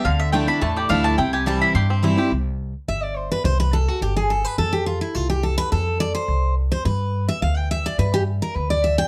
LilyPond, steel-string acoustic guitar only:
\new Staff \with { instrumentName = "Steel-string acoustic guitar" } { \time 4/4 \key c \major \tempo 4 = 212 << { r4 <f a d' e'>8 <d' e'>8 r4 <f a d' e'>4 | r4 <e g c' e'>4 r4 <e g c' e'>8 <c' e'>8 | r2 e''8 d''8 c''8 b'8 | c''8 b'8 a'8 fis'8 g'8 aes'8 a'8 b'8 |
a'8 g'8 f'8 e'8 f'8 g'8 a'8 b'8 | a'4 d''8 c''4. r8 c''8 | b'4. e''8 f''8 g''8 e''8 d''8 | b'8 g'8 r8 bes'8 b'8 d''8 e''8 g''8 | } \\ { d2 a,2 | c2 g,2 | r1 | r1 |
r1 | r1 | r1 | r1 | } >> }